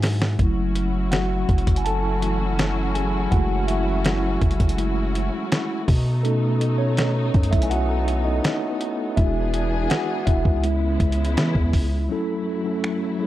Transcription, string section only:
0.39 5.84 F#3 medium
0.39 5.84 C#4 medium
0.39 5.84 E4 medium
0.39 5.84 F#4 medium
5.88 9.14 A3 medium
5.88 10.60 B3 medium
5.88 9.14 D#4 medium
9.17 10.62 E3 medium
9.17 10.62 D4 medium
9.17 10.62 G#4 medium
10.64 12.09 C#3 medium
10.64 12.09 G#3 medium
10.64 12.09 B3 medium
10.64 12.09 E4 medium
12.10 13.27 F#2 medium
12.10 13.27 F#3 medium
12.10 13.27 A3 medium
12.10 13.27 E4 medium

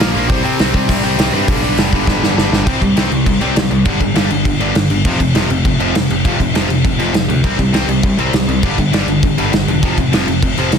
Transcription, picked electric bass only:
0.00 0.13 A#1 loud
0.15 0.30 A#1 loud
0.30 0.43 C2 medium
0.45 0.57 C3 loud
0.60 0.72 C2 loud
0.74 0.87 C2 loud
0.89 1.02 C2 loud
1.04 1.16 C2 loud
1.18 1.31 C2 loud
1.33 1.46 G2 medium
1.48 1.73 B1 medium
1.77 1.90 F1 loud
1.93 2.05 G1 medium
2.07 2.20 G1 medium
2.22 2.35 G1 loud
2.37 2.50 G1 loud
2.51 2.64 G1 loud
2.67 2.79 C2 medium
2.82 2.94 C2 medium
2.96 3.09 C2 medium
3.11 3.24 C2 medium
3.27 3.39 C2 loud
3.41 3.53 C2 medium
3.55 3.68 C2 loud
3.71 3.83 C2 medium
3.86 3.98 G1 medium
4.01 4.13 G1 medium
4.14 4.27 G1 loud
4.30 4.42 G1 loud
4.45 4.58 G1 loud
4.59 4.72 G1 medium
4.75 4.87 G1 medium
4.90 5.02 G1 medium
5.05 5.17 F1 medium
5.20 5.33 F1 loud
5.35 5.47 F1 loud
5.49 5.62 F1 loud
5.65 5.77 F1 medium
5.79 5.92 F1 loud
5.94 6.07 F1 loud
6.10 6.22 F1 loud
6.25 6.37 F1 medium
6.40 6.52 F1 medium
6.54 6.67 F1 medium
6.69 6.81 F1 medium
6.84 6.97 F1 medium
6.99 7.11 F1 medium
7.14 7.26 F1 loud
7.28 7.41 D2 medium
7.44 7.56 C2 medium
7.59 7.71 C2 medium
7.72 7.85 C2 medium
7.87 8.00 C2 medium
8.03 8.16 C2 medium
8.17 8.30 C2 medium
8.32 8.45 C2 medium
8.48 8.60 C2 loud
8.63 8.76 G1 medium
8.78 8.91 G1 medium
8.92 9.05 G1 loud
9.08 9.21 G1 medium
9.23 9.35 G1 medium
9.38 9.51 G1 medium
9.53 9.65 G1 loud
9.68 9.81 E1 loud
9.83 9.95 F1 medium
9.98 10.10 F1 loud
10.13 10.25 F1 loud
10.27 10.40 F1 loud
10.43 10.55 F1 loud
10.57 10.70 F1 loud
10.72 10.79 F1 loud

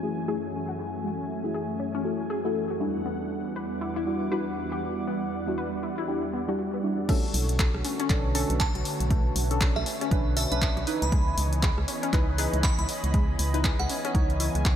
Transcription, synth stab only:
0.03 0.26 A3 medium
0.03 0.26 E4 medium
0.03 0.26 F#4 medium
0.03 0.26 G#4 loud
0.28 0.47 A3 medium
0.28 0.47 E4 medium
0.28 0.47 F#4 medium
0.28 0.47 G#4 loud
1.44 2.02 A3 medium
1.44 2.02 E4 medium
1.44 2.02 F#4 medium
1.44 2.02 G#4 loud
2.04 2.41 A3 medium
2.04 2.41 E4 medium
2.04 2.41 F#4 medium
2.04 2.41 A4 medium
2.45 2.72 A3 medium
2.45 2.72 E4 medium
2.45 2.72 F#4 medium
2.45 2.72 A4 loud
2.80 2.99 G3 medium
2.80 2.99 D4 medium
2.80 2.99 E4 medium
2.80 2.99 F#4 medium
4.06 4.29 G3 medium
4.06 4.29 D4 medium
4.06 4.29 E4 medium
4.06 4.29 F#4 loud
4.31 4.50 G3 medium
4.31 4.50 D4 medium
4.31 4.51 E4 medium
4.31 4.51 F#4 loud
5.47 6.05 G3 medium
5.47 6.06 D4 medium
5.47 6.06 E4 medium
5.47 6.06 F#4 loud
6.08 6.45 G3 medium
6.08 6.45 D4 medium
6.08 6.45 E4 medium
6.08 6.45 G4 medium
6.48 6.76 G3 medium
6.48 6.76 D4 medium
6.48 6.76 E4 medium
6.48 6.76 G4 loud
6.84 7.03 G3 medium
6.84 7.03 D4 medium
6.84 7.03 E4 medium
6.84 7.03 F#4 medium
7.09 7.84 C#4 loud
7.09 7.85 D4 medium
7.09 7.85 A4 loud
8.09 8.32 C#4 medium
8.09 8.33 D4 medium
8.09 8.33 A4 loud
8.35 8.54 C#4 loud
8.35 8.54 D4 medium
8.35 8.54 A4 loud
9.50 10.09 C#4 medium
9.50 10.09 D4 medium
9.50 10.09 A4 loud
10.11 10.48 C#4 medium
10.11 10.48 D4 medium
10.11 10.48 B4 medium
10.51 10.79 C#4 loud
10.51 10.79 D4 medium
10.51 10.79 B4 loud
10.87 11.06 D#4 medium
10.87 11.06 E4 medium
10.87 11.06 B4 medium
12.13 12.36 D#4 medium
12.13 12.36 E4 medium
12.13 12.36 B4 loud
12.38 12.57 D#4 loud
12.38 12.57 E4 medium
12.38 12.57 B4 loud
13.54 14.12 D#4 medium
13.54 14.12 E4 medium
13.54 14.12 B4 loud
14.14 14.51 D#4 medium
14.14 14.51 E4 medium
14.14 14.51 C#5 medium

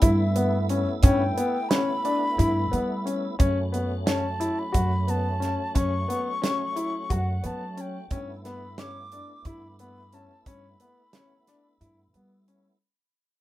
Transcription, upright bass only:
0.02 0.82 G2 medium
1.03 1.30 G2 medium
2.39 2.65 G2 loud
2.73 3.26 G3 medium
3.40 4.46 F#2 medium
4.74 5.54 F#2 medium
5.76 6.02 F#2 medium
7.11 7.37 F#2 medium
7.44 7.97 F#3 medium
8.11 9.17 G2 medium
9.45 10.25 G2 medium
10.46 10.73 G2 medium
11.81 12.07 G2 medium
12.14 12.67 G3 medium

